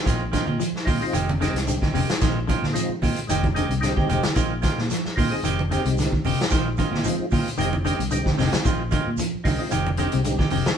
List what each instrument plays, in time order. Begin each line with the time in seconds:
0.05 fingered electric bass A#1, clean electric guitar D#3 G#3 C4 F4, muted clean electric guitar stroke, kick, closed hi-hat, shekere
0.32 clean electric guitar D3 D#3 G#3 C4 F4, kick, snare, closed hi-hat, high conga, shekere
0.46 fingered electric bass A#2, clean electric guitar G#3 C4 F4, high conga
0.60 clean electric guitar F3, closed hi-hat, shekere
0.73 muted fingered electric bass stroke, snare
0.85 fingered electric bass A#2, clean electric guitar D#3 G#3 C4 F4, tonewheel organ D#4 F4, kick, open hi-hat, high conga, low conga, shekere
1.01 tonewheel organ G#3 C4 D#4 F4
1.13 fingered electric bass F1, clean electric guitar D#3 G#3 C4 G4, closed hi-hat, shekere
1.29 high conga
1.40 clean electric guitar D3 D#3 G#3 C4, tonewheel organ G#3 C4 D#4 G4, snare, closed hi-hat, low conga, shekere
1.54 fingered electric bass C2, snare, closed hi-hat
1.68 clean electric guitar D3, closed hi-hat, shekere
1.82 clean electric guitar G#3 C4, kick, snare, high conga
1.93 fingered electric bass F1, clean electric guitar C3 D#3 G#3 C4 G4, open hi-hat, low conga, shekere
2.08 muted fingered electric bass stroke, snare, closed hi-hat
2.21 fingered electric bass A#1, clean electric guitar D#3 G#3 C4 F4, kick, snare, closed hi-hat, shekere
2.47 clean electric guitar D3 D#3 G#3 C4 F4, kick, closed hi-hat, high conga, shekere
2.62 fingered electric bass A#2, snare, high conga
2.73 clean electric guitar F3, tonewheel organ G#3 C4 D#4 F4, closed hi-hat, shekere
2.89 muted fingered electric bass stroke
3.02 fingered electric bass A#2, clean electric guitar D#3 G#3 C4 F4, kick, open hi-hat, high conga, low conga, shekere
3.16 closed hi-hat
3.27 fingered electric bass F1, clean electric guitar D#3 G#3 C4 G4, tonewheel organ G#3 C4 D#4 G4, closed hi-hat, shekere
3.43 kick, high conga
3.54 clean electric guitar D3 D#3 G#3 C4 G4, tonewheel organ G#3 C4 D#4 G#4, closed hi-hat, low conga, shekere
3.69 fingered electric bass C2, clean electric guitar C3, closed hi-hat
3.80 clean electric guitar D3, tonewheel organ G#3 C4 D#4 G4, snare, closed hi-hat, shekere
3.97 clean electric guitar G#3 C4 G4, kick, high conga
4.09 fingered electric bass F1, clean electric guitar C3 D#3 G#3 C4 G4, closed hi-hat, low conga, shekere
4.23 muted fingered electric bass stroke, snare, closed hi-hat, high conga
4.36 fingered electric bass A#1, clean electric guitar D#3 G#3 C4 F4, kick, closed hi-hat, shekere
4.61 clean electric guitar D#3 G#3 C4 F4, muted clean electric guitar stroke, kick, snare, closed hi-hat, high conga, shekere
4.78 fingered electric bass A#2, snare
4.90 clean electric guitar F3, snare, closed hi-hat, shekere
5.05 muted fingered electric bass stroke, snare
5.16 fingered electric bass A#2, clean electric guitar D#3 G#3 C4 F4, tonewheel organ D#4 F4, kick, open hi-hat, high conga, low conga, shekere
5.30 tonewheel organ G#3 C4 D#4 G#4
5.43 fingered electric bass F1, clean electric guitar D#3 G#3 C4 G4, closed hi-hat, shekere
5.59 high conga
5.69 clean electric guitar D3 D#3 G#3 C4 G4, tonewheel organ G#3 C4 D#4 G4, closed hi-hat, low conga, shekere
5.85 fingered electric bass C2, clean electric guitar C3, closed hi-hat
5.98 clean electric guitar D3, snare, closed hi-hat, high conga, shekere
6.12 kick, high conga
6.25 fingered electric bass F1, clean electric guitar C3 D#3 G#3 C4 G4, open hi-hat, low conga, shekere
6.38 muted fingered electric bass stroke, snare, closed hi-hat
6.50 fingered electric bass A#1, clean electric guitar D#3 G#3 C4 F4, kick, snare, closed hi-hat, shekere
6.77 clean electric guitar D3 D#3 G#3 C4 F4, kick, closed hi-hat, high conga, shekere
6.91 fingered electric bass A#2, clean electric guitar G#3 C4 F4, snare, high conga
7.04 clean electric guitar F3, tonewheel organ G#3 C4 D#4 F4, closed hi-hat, low conga, shekere
7.19 muted fingered electric bass stroke
7.31 fingered electric bass A#2, clean electric guitar D#3 G#3 C4 F4, kick, open hi-hat, high conga, low conga, shekere
7.48 closed hi-hat
7.57 fingered electric bass F1, clean electric guitar D#3 G#3 C4 G4, tonewheel organ G#3 C4 D#4 G4, closed hi-hat, shekere
7.73 high conga
7.85 clean electric guitar D3 D#3 G#3 C4 G4, tonewheel organ G#3 C4 D#4 G4, closed hi-hat, low conga, shekere
7.99 fingered electric bass C2, clean electric guitar C3, closed hi-hat
8.11 clean electric guitar D3, tonewheel organ G#3 C4 D#4 G4, closed hi-hat, shekere
8.26 kick, snare, high conga
8.38 fingered electric bass F1, clean electric guitar C3 D#3 G#3 C4 G4, snare, open hi-hat, low conga, shekere
8.52 muted fingered electric bass stroke, snare, closed hi-hat, high conga
8.65 fingered electric bass A#1, clean electric guitar D#3 G#3 C4 F4, kick, closed hi-hat, shekere
8.91 clean electric guitar D3 D#3 G#3 C4 F4, kick, closed hi-hat, high conga, shekere
9.07 fingered electric bass A#2
9.17 clean electric guitar F3, closed hi-hat, low conga, shekere
9.35 muted fingered electric bass stroke
9.44 fingered electric bass C2, clean electric guitar D#3 G#3 C4, tonewheel organ D#4 F4, kick, open hi-hat, high conga, low conga, shekere
9.59 tonewheel organ G#3 C4 D#4 F4
9.71 fingered electric bass F1, clean electric guitar D#3 G#3 C4 G4, closed hi-hat, shekere
9.87 high conga
9.97 clean electric guitar D3 D#3 G#3 C4 G4, tonewheel organ G#3 C4 D#4 G4, closed hi-hat, low conga, shekere
10.12 fingered electric bass C2, clean electric guitar C3, closed hi-hat
10.24 clean electric guitar D3, closed hi-hat, shekere
10.39 clean electric guitar G#3 C4 G4, kick, snare, high conga
10.50 fingered electric bass F1, clean electric guitar C3 D#3 G#3 C4 G4, open hi-hat, low conga, shekere
10.66 muted fingered electric bass stroke, snare, closed hi-hat, high conga